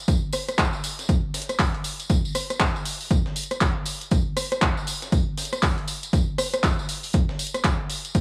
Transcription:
0.08 kick loud
0.08 closed hi-hat medium
0.08 tambourine medium
0.33 cross-stick medium
0.33 closed hi-hat medium
0.33 open hi-hat loud
0.33 tambourine loud
0.48 cross-stick medium
0.48 closed hi-hat medium
0.48 tambourine soft
0.58 kick loud
0.58 snare loud
0.58 clap loud
0.58 closed hi-hat medium
0.58 tambourine medium
0.73 tambourine soft
0.84 closed hi-hat medium
0.84 open hi-hat loud
0.84 tambourine loud
0.99 snare soft
0.99 closed hi-hat medium
0.99 tambourine soft
1.09 kick loud
1.09 closed hi-hat medium
1.09 tambourine medium
1.34 snare medium
1.34 closed hi-hat medium
1.34 open hi-hat loud
1.34 tambourine medium
1.42 closed hi-hat medium
1.49 cross-stick medium
1.49 closed hi-hat soft
1.49 tambourine soft
1.59 kick loud
1.59 snare loud
1.59 clap loud
1.59 closed hi-hat medium
1.59 open hi-hat medium
1.59 tambourine medium
1.74 closed hi-hat soft
1.84 closed hi-hat medium
1.84 open hi-hat loud
1.84 tambourine loud
2.00 closed hi-hat medium
2.00 tambourine soft
2.10 kick loud
2.10 closed hi-hat medium
2.10 tambourine medium
2.25 tambourine soft
2.35 cross-stick medium
2.35 closed hi-hat medium
2.35 open hi-hat loud
2.35 tambourine medium
2.50 cross-stick medium
2.50 closed hi-hat medium
2.50 tambourine soft
2.60 kick loud
2.60 snare loud
2.60 clap loud
2.60 closed hi-hat medium
2.60 open hi-hat medium
2.60 tambourine medium
2.76 tambourine soft
2.85 closed hi-hat medium
2.85 open hi-hat loud
2.85 tambourine loud
3.01 open hi-hat medium
3.01 tambourine soft
3.11 kick loud
3.11 closed hi-hat medium
3.11 tambourine medium
3.26 snare medium
3.36 closed hi-hat medium
3.36 open hi-hat loud
3.36 tambourine medium
3.43 closed hi-hat medium
3.51 cross-stick medium
3.51 closed hi-hat soft
3.51 tambourine soft
3.61 kick loud
3.61 snare loud
3.61 clap loud
3.61 closed hi-hat medium
3.61 tambourine medium
3.85 closed hi-hat medium
3.85 open hi-hat loud
3.85 tambourine loud
4.01 closed hi-hat medium
4.01 tambourine soft
4.11 kick loud
4.11 closed hi-hat medium
4.11 tambourine medium
4.37 cross-stick medium
4.37 closed hi-hat medium
4.37 open hi-hat loud
4.37 tambourine loud
4.52 cross-stick medium
4.52 closed hi-hat medium
4.52 tambourine soft
4.61 kick loud
4.61 snare loud
4.61 clap loud
4.61 closed hi-hat medium
4.61 tambourine medium
4.77 tambourine soft
4.87 closed hi-hat medium
4.87 open hi-hat loud
4.87 tambourine loud
5.02 snare soft
5.02 closed hi-hat medium
5.02 tambourine soft
5.12 kick loud
5.12 closed hi-hat medium
5.12 tambourine medium
5.38 snare medium
5.38 closed hi-hat medium
5.38 open hi-hat loud
5.38 tambourine medium
5.45 closed hi-hat medium
5.53 cross-stick medium
5.53 closed hi-hat soft
5.53 tambourine soft
5.62 kick loud
5.62 snare loud
5.62 clap loud
5.62 closed hi-hat medium
5.62 open hi-hat medium
5.62 tambourine medium
5.78 closed hi-hat soft
5.88 closed hi-hat medium
5.88 open hi-hat loud
5.88 tambourine loud
6.03 closed hi-hat medium
6.03 tambourine soft
6.13 kick loud
6.13 closed hi-hat medium
6.13 tambourine medium
6.38 cross-stick medium
6.38 closed hi-hat medium
6.38 open hi-hat loud
6.38 tambourine loud
6.54 cross-stick medium
6.54 closed hi-hat medium
6.54 tambourine soft
6.64 kick loud
6.64 snare loud
6.64 clap loud
6.64 closed hi-hat medium
6.64 open hi-hat medium
6.64 tambourine soft
6.79 tambourine soft
6.89 closed hi-hat medium
6.89 open hi-hat loud
6.89 tambourine medium
7.03 open hi-hat medium
7.03 tambourine soft
7.13 kick loud
7.13 closed hi-hat medium
7.13 tambourine medium
7.29 snare medium
7.39 closed hi-hat medium
7.39 open hi-hat loud
7.39 tambourine medium
7.47 closed hi-hat medium
7.54 cross-stick medium
7.54 closed hi-hat medium
7.54 tambourine soft
7.64 kick loud
7.64 snare loud
7.64 clap loud
7.64 closed hi-hat medium
7.64 tambourine soft
7.90 closed hi-hat medium
7.90 open hi-hat loud
7.90 tambourine medium
8.05 closed hi-hat medium
8.05 tambourine soft
8.15 kick loud
8.15 closed hi-hat medium
8.15 tambourine soft

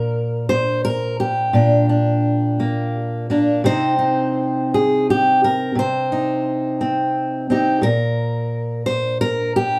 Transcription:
0.00 1.49 A#2 medium
0.00 0.49 A#4 medium
0.49 0.84 C5 medium
0.85 1.19 A#4 loud
1.20 2.94 G4 medium
1.53 3.61 A#2 medium
1.53 1.88 D4 soft
1.89 3.30 D4 soft
2.60 3.29 A#3 soft
3.30 3.65 A#3 soft
3.30 3.65 D4 soft
3.30 3.62 A#4 soft
3.64 5.74 C3 medium
3.64 5.73 C4 soft
3.64 3.98 D#4 soft
3.64 4.72 C5 loud
3.99 5.71 D#4 soft
4.74 5.08 G#4 medium
5.10 5.44 G4 medium
5.44 5.78 A#4 medium
5.75 7.83 C3 medium
5.75 7.16 C5 medium
6.12 7.50 D#4 soft
6.81 7.49 C4 soft
7.50 7.80 C4 soft
7.50 7.80 D#4 soft
7.50 7.83 G4 soft
7.82 9.79 A#2 medium
7.82 8.86 A#4 medium
8.86 9.21 C5 medium
9.21 9.56 A#4 loud
9.56 9.79 G4 medium

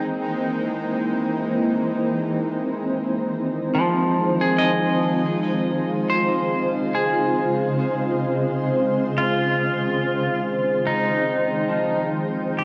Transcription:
0.00 2.40 E3 medium
0.00 9.26 G#3 medium
0.00 3.76 A#3 medium
0.00 12.64 C4 medium
0.00 9.26 D#4 medium
0.00 9.18 A#4 medium
0.00 12.64 C5 medium
0.00 3.77 G5 medium
0.00 9.18 A#5 medium
2.41 5.79 D#3 medium
2.47 12.56 G#3 medium
2.83 10.52 F4 medium
3.75 6.78 F3 medium
4.41 6.27 G#4 medium
4.59 7.62 D#5 medium
5.79 9.17 C#3 medium
6.10 7.12 C5 medium
6.95 9.98 G#4 medium
9.16 12.55 D#3 medium
9.16 10.40 F4 loud
10.12 12.64 G5 medium
10.87 12.09 D#4 medium
11.69 12.64 F3 medium
12.54 12.64 E3 medium
12.59 12.64 G4 medium

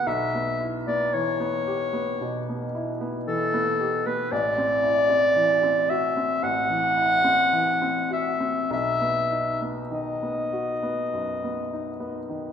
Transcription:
0.06 2.17 B1 medium
0.06 0.70 E5 medium
0.35 0.77 B3 medium
0.61 1.03 E4 medium
0.87 1.30 B3 medium
0.87 1.15 D5 medium
1.14 1.56 E3 soft
1.14 2.75 C#5 medium
1.40 1.83 B3 medium
1.67 2.10 G4 medium
1.93 2.37 B3 medium
2.21 2.64 B2 medium
2.49 2.91 B3 soft
2.75 3.17 E4 medium
3.01 3.43 B3 medium
3.28 3.69 E3 medium
3.28 4.08 A4 medium
3.54 3.95 B3 medium
3.80 4.21 G4 medium
4.06 4.32 B3 medium
4.06 4.33 B4 medium
4.32 6.40 A1 medium
4.32 5.91 D5 loud
4.58 5.00 C4 medium
4.84 5.26 E4 medium
5.09 5.52 C4 soft
5.36 5.79 E3 soft
5.63 6.06 C4 medium
5.90 6.33 F#4 medium
5.90 6.44 E5 medium
6.17 6.60 C4 medium
6.43 8.68 A1 medium
6.43 8.12 F#5 loud
6.70 7.15 E3 soft
6.96 7.42 E4 medium
7.24 7.71 C4 medium
7.53 8.00 E3 medium
7.82 8.29 C4 medium
8.10 8.59 F#4 soft
8.10 8.71 E5 medium
8.40 8.71 C4 medium
8.70 11.10 B1 medium
8.70 9.61 E5 loud
9.01 9.50 B3 medium
9.32 9.81 D#4 medium
9.62 10.11 B3 soft
9.91 10.41 D#3 soft
9.91 12.26 D#5 medium
10.22 10.72 B3 soft
10.53 11.02 F#4 medium
10.83 11.31 B3 soft
11.13 11.60 F#2 soft
11.44 11.90 B3 soft
11.73 12.19 D#4 medium
12.00 12.47 B3 soft
12.29 12.52 D#3 soft

